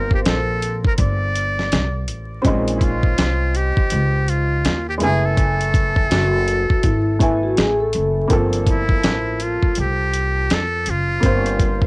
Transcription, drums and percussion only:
0.11 kick
0.25 snare, closed hi-hat
0.62 closed hi-hat
0.84 kick
0.98 kick, closed hi-hat
1.35 closed hi-hat
1.59 snare
1.72 snare, closed hi-hat
2.08 closed hi-hat
2.45 kick, closed hi-hat
2.68 closed hi-hat
2.81 kick, closed hi-hat
3.03 kick
3.18 snare, closed hi-hat
3.55 closed hi-hat
3.77 kick
3.90 closed hi-hat
4.28 closed hi-hat
4.65 snare, closed hi-hat
5.00 closed hi-hat
5.37 kick, closed hi-hat
5.61 closed hi-hat
5.74 kick, closed hi-hat
5.96 kick
6.11 snare, closed hi-hat
6.48 closed hi-hat
6.70 kick
6.83 kick, closed hi-hat
7.20 kick, closed hi-hat
7.57 snare, closed hi-hat
7.93 closed hi-hat
8.30 kick, closed hi-hat
8.53 closed hi-hat
8.67 kick, closed hi-hat
8.89 kick
9.03 snare, closed hi-hat
9.40 closed hi-hat
9.63 kick
9.75 closed hi-hat
10.14 closed hi-hat
10.50 snare, closed hi-hat
10.86 closed hi-hat
11.23 kick, closed hi-hat
11.46 closed hi-hat
11.59 kick, closed hi-hat
11.82 kick

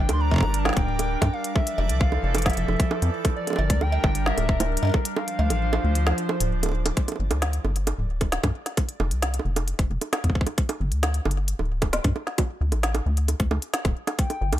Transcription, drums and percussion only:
0.09 closed hi-hat, high bongo
0.31 kick, cowbell
0.34 kick
0.36 kick
0.38 kick
0.41 kick, high bongo
0.54 closed hi-hat
0.65 snare, high bongo
0.69 snare
0.73 kick, snare, closed hi-hat
0.99 closed hi-hat, high bongo
1.22 kick, closed hi-hat, cowbell, high bongo
1.44 closed hi-hat
1.56 kick, high bongo
1.67 closed hi-hat
1.78 cowbell
1.89 closed hi-hat
2.01 kick
2.12 high bongo
2.35 closed hi-hat, high bongo
2.38 closed hi-hat
2.42 kick, snare, closed hi-hat
2.46 closed hi-hat
2.50 closed hi-hat
2.53 closed hi-hat
2.57 closed hi-hat
2.68 high bongo
2.80 kick, closed hi-hat
2.91 high bongo
3.02 closed hi-hat
3.25 kick, closed hi-hat, high bongo
3.47 closed hi-hat, high bongo
3.50 high bongo
3.53 high bongo
3.56 cowbell, high bongo
3.70 kick, closed hi-hat
3.81 high bongo
3.92 cowbell
4.04 kick, high bongo
4.15 closed hi-hat
4.26 snare
4.38 closed hi-hat, high bongo
4.49 kick
4.60 closed hi-hat, high bongo
4.77 closed hi-hat
4.83 cowbell
4.85 cowbell
4.87 cowbell
4.89 cowbell
4.92 kick, cowbell, high bongo
5.05 closed hi-hat
5.16 high bongo
5.28 closed hi-hat
5.39 cowbell
5.50 closed hi-hat, high bongo
5.73 cowbell, high bongo
5.95 closed hi-hat
6.07 snare, high bongo
6.18 closed hi-hat
6.29 high bongo
6.40 closed hi-hat
6.63 closed hi-hat, high bongo
6.66 high bongo
6.69 high bongo
6.72 high bongo
6.86 closed hi-hat, high bongo
6.97 kick, closed hi-hat
7.08 closed hi-hat, high bongo
7.12 high bongo
7.16 high bongo
7.31 closed hi-hat, high bongo
7.42 snare, closed hi-hat
7.53 closed hi-hat
7.65 high bongo
7.76 closed hi-hat
7.87 closed hi-hat, high bongo
8.21 kick, closed hi-hat, high bongo
8.32 snare, closed hi-hat
8.43 kick, closed hi-hat, high bongo
8.66 snare, closed hi-hat
8.77 kick, closed hi-hat, high bongo
8.89 closed hi-hat
9.00 high bongo
9.11 closed hi-hat
9.22 snare, closed hi-hat
9.34 closed hi-hat
9.39 high bongo
9.56 closed hi-hat, high bongo
9.68 closed hi-hat
9.79 kick, closed hi-hat
10.01 closed hi-hat, high bongo
10.13 snare, closed hi-hat, high bongo
10.24 kick, closed hi-hat
10.30 kick
10.35 kick
10.41 kick
10.47 closed hi-hat, high bongo
10.58 kick, closed hi-hat
10.69 closed hi-hat, high bongo
10.92 closed hi-hat
11.03 snare, closed hi-hat, high bongo
11.14 closed hi-hat
11.25 high bongo
11.31 closed hi-hat
11.48 closed hi-hat
11.59 high bongo
11.82 kick, closed hi-hat, high bongo
11.93 snare, closed hi-hat
12.04 kick, closed hi-hat
12.16 high bongo
12.27 snare
12.38 kick, closed hi-hat, high bongo
12.72 closed hi-hat, high bongo
12.83 snare, closed hi-hat
12.95 closed hi-hat, high bongo
13.17 closed hi-hat
13.28 closed hi-hat, high bongo
13.40 kick, closed hi-hat
13.51 high bongo
13.62 closed hi-hat
13.74 snare, closed hi-hat
13.85 kick, closed hi-hat, high bongo
14.07 snare, closed hi-hat, high bongo
14.19 kick, closed hi-hat
14.30 closed hi-hat, high bongo
14.53 closed hi-hat, high bongo

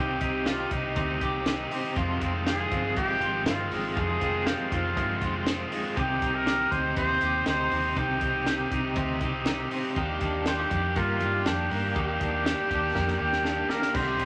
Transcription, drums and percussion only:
0.21 kick, closed hi-hat
0.46 snare, closed hi-hat
0.71 kick, closed hi-hat
0.96 kick, closed hi-hat
1.21 kick, closed hi-hat
1.46 snare, closed hi-hat
1.71 open hi-hat
1.96 kick, closed hi-hat
2.21 kick, closed hi-hat
2.46 snare, closed hi-hat
2.72 kick, closed hi-hat
2.96 kick, closed hi-hat
3.21 closed hi-hat
3.46 snare, closed hi-hat
3.71 open hi-hat
3.97 kick, closed hi-hat
4.21 kick, closed hi-hat
4.47 snare, closed hi-hat
4.72 kick, closed hi-hat
4.97 kick, closed hi-hat
5.22 kick, closed hi-hat
5.46 snare, closed hi-hat
5.72 open hi-hat
5.97 kick, closed hi-hat
6.22 kick, closed hi-hat
6.47 snare, closed hi-hat
6.72 kick, closed hi-hat
6.97 kick, closed hi-hat
7.21 snare, closed hi-hat
7.46 snare, closed hi-hat
7.71 open hi-hat
7.97 kick, closed hi-hat
8.21 kick, closed hi-hat
8.46 snare, closed hi-hat
8.71 kick, closed hi-hat
8.96 kick, closed hi-hat
9.21 kick, closed hi-hat
9.46 snare, closed hi-hat
9.71 open hi-hat
9.96 kick, closed hi-hat
10.21 kick, closed hi-hat
10.46 snare, closed hi-hat
10.71 kick, closed hi-hat
10.96 kick, closed hi-hat
11.20 closed hi-hat
11.46 snare, closed hi-hat
11.71 open hi-hat
11.96 kick, closed hi-hat
12.21 kick, closed hi-hat
12.46 snare, closed hi-hat
12.71 kick, closed hi-hat
12.95 kick, snare
13.08 snare
13.33 snare
13.45 snare
13.70 snare
13.82 snare
13.95 kick, crash
14.19 closed hi-hat

